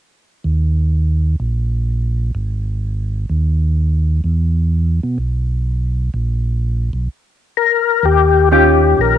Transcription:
0.44 D#2
1.40 A#1
2.35 G#1
3.30 D#2
4.24 E2
5.03 B2
5.18 B1
6.14 A#1
6.93 B1
7.57 A#4
8.03 D#2 G4
8.51 D#3 C#4 F4 G4
8.98 A#1 A#4

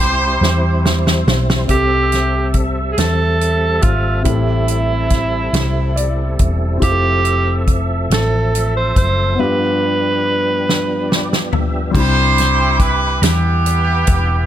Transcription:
Already playing: C2 C3 G3 C4 E4 G4 C5 B5
0.00 snare
0.41 E2, snare
0.86 snare
1.07 snare
1.27 B1, snare
1.50 snare
1.65 C2 G3 C4 A4 E5, closed hi-hat
1.69 C3 G3 A3 C4 G4 A4 E5, kick
2.12 snare, closed hi-hat
2.54 kick, closed hi-hat
2.92 G#4
2.98 E2 A4, snare, closed hi-hat
3.41 closed hi-hat
3.82 G#1 F4, kick, closed hi-hat
4.22 A1 A2 C4 E4, kick, closed hi-hat
4.27 G3 C4 E4 G4 A4
4.68 closed hi-hat
5.10 kick, snare, closed hi-hat
5.53 C2, snare, closed hi-hat
5.96 D5, closed hi-hat
6.39 E1, kick, closed hi-hat
6.78 F3 C4 E4
6.82 F1 F3 A3 C4 F4 G4 A4 E5, kick, closed hi-hat
6.91 A4
7.25 closed hi-hat
7.67 kick, closed hi-hat
8.10 A1 A4, snare, closed hi-hat
8.55 closed hi-hat
8.77 C5
8.96 F#1 C5, kick, closed hi-hat
9.35 F3 G3 B3 D4
9.39 G2 D4 F4 G4 B4
10.69 snare
11.08 D5, snare
11.33 snare
11.52 E5, floor tom
11.91 C2 G3 D4 C5, kick, crash
11.95 C3 E4 G4 B5
12.38 snare, closed hi-hat
12.79 B4, kick, closed hi-hat
13.22 E2 B3 E4 G4, snare, closed hi-hat
13.66 closed hi-hat
14.07 E1, kick, closed hi-hat

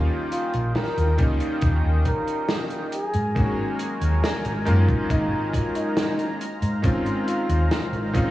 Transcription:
Already playing: D#3 G3 A#3 C#4 F4 D#5 G5
0.32 F4, closed hi-hat
0.53 A#1, closed hi-hat
0.75 A#4, snare, closed hi-hat
0.97 D#2, closed hi-hat
1.18 C#2 D#3 G3 A#3 C#4 D#4, kick, closed hi-hat
1.40 closed hi-hat
1.61 D#2, kick, closed hi-hat
1.84 D#2
2.05 A#4, kick, closed hi-hat
2.27 closed hi-hat
2.48 snare, closed hi-hat
2.70 closed hi-hat
2.92 F#3 G#4 A#4 G#5 A#5, closed hi-hat
3.13 G#2, closed hi-hat
3.35 G#1 D#3 G#3 A#3 C#4 F#4, kick, closed hi-hat
3.79 closed hi-hat
4.01 D#2, closed hi-hat
4.24 snare, closed hi-hat
4.44 G#1, closed hi-hat
4.65 F#2 D#3 G#3 A#3 C#4 F4, closed hi-hat
4.88 kick, closed hi-hat
5.10 G#1 D#4, kick, closed hi-hat
5.32 G#1
5.53 kick, closed hi-hat
5.75 D#4, closed hi-hat
5.97 snare, closed hi-hat
6.19 closed hi-hat
6.40 D#4 C5 F5, closed hi-hat
6.62 G#2, closed hi-hat
6.82 G#1 D#3 G#3 C4 C#4 F4, kick, closed hi-hat
7.06 closed hi-hat
7.28 F4, closed hi-hat
7.49 D#2, closed hi-hat
7.71 snare, closed hi-hat
7.92 G#1, closed hi-hat
8.13 G#1 D#3 G#3 C4 C#4 D#4 F4, kick, closed hi-hat

